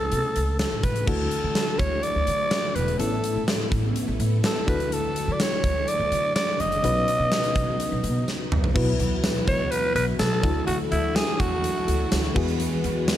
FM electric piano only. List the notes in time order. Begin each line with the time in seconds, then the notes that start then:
Already playing: C#3 A3 C#4 E4 A4
1.06 D3 A3 D4 E4 F#4
2.98 A2 B3 C#4 E4 A4
4.67 D3 D4 E4 F#4 A4
6.82 B2 C#4 D#4 F#4 B4
8.74 B2 B3 E4 F#4 B4
10.43 D3 D4 E4 F#4 A4
12.34 E3 B3 E4 F#4 G#4